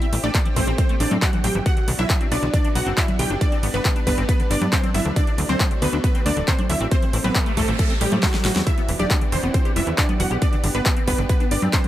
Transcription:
Already playing: A3 C4 E4 G4 E5
0.02 C4, closed hi-hat
0.13 A1 G3, open hi-hat
0.23 A1 A3 D4 D5, closed hi-hat
0.35 A3, kick, clap, closed hi-hat
0.46 E3, closed hi-hat
0.56 A1 E3 C4 C5, kick, open hi-hat
0.67 A1 C4, closed hi-hat
0.78 G3 C4 C5, kick, closed hi-hat
0.89 A3, closed hi-hat
1.00 A1 G3 D4 D5, open hi-hat
1.11 A2 C4, closed hi-hat, high conga
1.22 C4 F#4 F#5, kick, clap, closed hi-hat
1.33 E3, closed hi-hat, high conga
1.44 A1 C4 G4 G5, open hi-hat, high conga
1.55 G1 E3, closed hi-hat
1.66 F#3 B3 D4 F#4 F#5, kick, closed hi-hat
1.77 D3, closed hi-hat
1.88 B1 D3, open hi-hat
1.99 B1 D4 E4 E5, closed hi-hat, high conga
2.10 F#3, kick, clap, closed hi-hat
2.21 C4, closed hi-hat
2.32 B1 B3 D4 D5, open hi-hat
2.43 B1 D3, closed hi-hat
2.54 D3 D4 D5, kick, closed hi-hat
2.64 D4, closed hi-hat
2.75 B1 F#3 F#4 F#5, open hi-hat
2.86 F#1 C4, closed hi-hat
2.97 B3 E4 E5, kick, clap, closed hi-hat
3.08 D3, closed hi-hat, high conga
3.19 B1 D3 G4 G5, open hi-hat
3.30 F#1 D4
3.41 G3 D4 D5, kick, closed hi-hat
3.52 C4, closed hi-hat
3.63 G1 B3, open hi-hat
3.74 G1 D3 B3 B4, closed hi-hat
3.85 D3, kick, clap, closed hi-hat
3.96 D4, closed hi-hat
4.07 G1 G3 B3 B4, kick, open hi-hat
4.18 G1 C4, closed hi-hat
4.29 B3 B4, kick, closed hi-hat
4.40 D3, closed hi-hat
4.51 G1 D3 D4 D5, open hi-hat
4.61 G2 D4, closed hi-hat, high conga
4.72 G3 C4 C5, kick, clap, closed hi-hat
4.83 C4, closed hi-hat, high conga
4.94 G1 B3 E4 E5, open hi-hat, high conga
5.05 D2 D3, closed hi-hat
5.16 D3 F#3 A3 D4 D5, kick, closed hi-hat
5.27 D4, closed hi-hat
5.38 D2 F#3, open hi-hat
5.49 D2 C4 C5, closed hi-hat, high conga
5.60 A3, kick, clap, closed hi-hat
5.71 D3, closed hi-hat
5.82 D2 D3 B3 B4, open hi-hat
5.93 D2 D4, closed hi-hat
6.04 F#3 B3 B4, kick, closed hi-hat
6.15 C4, closed hi-hat
6.26 D2 A3 D4 D5, open hi-hat
6.37 D1 D3, closed hi-hat
6.48 D3 C4 C5, kick, clap, closed hi-hat
6.59 D4, closed hi-hat, high conga
6.69 D2 F#3 E4 E5, open hi-hat
6.81 A1 C4, closed hi-hat
6.91 G3 A3 C4 C5, kick, closed hi-hat, noise sweep
7.02 E3, closed hi-hat
7.13 A1 E3, open hi-hat
7.24 A1 B3 C4 B4, closed hi-hat, high conga
7.35 G3, kick, clap, closed hi-hat
7.46 A3, closed hi-hat
7.57 A1 A3 A4, kick, open hi-hat
7.68 A1 E3, closed hi-hat
7.79 E3 A3 A4, kick, closed hi-hat
7.90 C4, closed hi-hat
8.01 A1 G3 G4, open hi-hat
8.12 A2 A3, closed hi-hat, high conga
8.23 F#3 A3 F#4, kick, snare, clap, open hi-hat
8.34 E3, snare, closed hi-hat, high conga
8.45 A1 E3 F#3 F#4, snare, open hi-hat, high conga
8.56 E2 C4, snare, closed hi-hat
8.67 D3 E3 B3 D4 E4 F#4 G4 E5, kick, closed hi-hat
8.78 B3, closed hi-hat
8.89 E1 E3, open hi-hat
8.99 E1 D4 G4 D5, closed hi-hat, high conga
9.10 G3, kick, clap, closed hi-hat
9.21 D3, closed hi-hat
9.32 E1 D3 C4 C5, open hi-hat
9.43 E1 B3, closed hi-hat
9.54 E3 C4 C5, kick, closed hi-hat
9.65 G4, closed hi-hat
9.76 E1 G3 E4 E5, open hi-hat
9.87 E2 D3, closed hi-hat
9.98 D3 D4 D5, kick, clap, closed hi-hat
10.09 B3, closed hi-hat, high conga
10.20 E1 E3 F#4 F#5, open hi-hat
10.31 B1 G4, closed hi-hat
10.42 B3 D4 D5, kick, closed hi-hat
10.53 D3, closed hi-hat
10.64 G1 D3, open hi-hat
10.75 G1 B3 D4 B4, closed hi-hat
10.86 G3, kick, clap, closed hi-hat
10.96 C4, closed hi-hat
11.07 G1 B3 B4, kick, open hi-hat
11.18 G1 D3, closed hi-hat
11.29 D3 B3 B4, kick, closed hi-hat
11.40 D4, closed hi-hat
11.51 G1 G3 D4 D5, open hi-hat
11.62 G2 C4, closed hi-hat, high conga
11.73 B3 C4 C5, kick, clap, closed hi-hat
11.84 D3, closed hi-hat, high conga

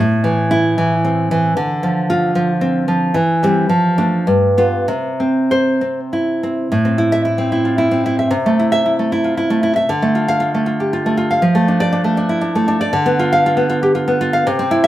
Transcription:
0.00 A2
0.24 E3
0.51 E4
0.78 E3
1.05 C4
1.31 E3
1.57 D3
1.83 F3
2.10 F4
2.35 F3
2.61 C4
2.88 F3
3.14 E3
3.43 G3 C4
3.69 F3
3.98 A3 D4
4.27 G2
4.58 B3 F4
4.88 C3
5.20 C4
5.51 C5
5.81 C4
6.13 E4
6.43 C4
6.72 A2
6.85 C4
6.98 E4
7.12 E5
7.25 E4
7.38 C4
7.52 E4
7.65 F4
7.78 E4
7.91 C4
8.06 E4
8.19 E5
8.31 C3
8.46 A3
8.59 E4
8.72 E5
8.86 E4
8.99 A3
9.12 E4
9.24 F4
9.37 E4
9.50 A3
9.63 E4
9.76 E5
9.89 D3
10.02 A3
10.15 F4
10.28 F5
10.40 F4
10.54 A3
10.66 F4
10.80 G4
10.93 F4
11.06 A3
11.17 F4
11.31 F5
11.42 F3
11.55 A3
11.68 D4
11.80 D5
11.93 D4
12.04 A3
12.17 D4
12.29 E4
12.41 D4
12.55 A3
12.68 D4
12.81 D5
12.93 D3
13.06 B3
13.19 F4
13.33 F5
13.46 F4
13.57 B3
13.70 F4
13.83 G4
13.95 F4
14.08 B3
14.21 F4
14.33 F5
14.47 C3
14.59 C4
14.71 E4
14.84 E5

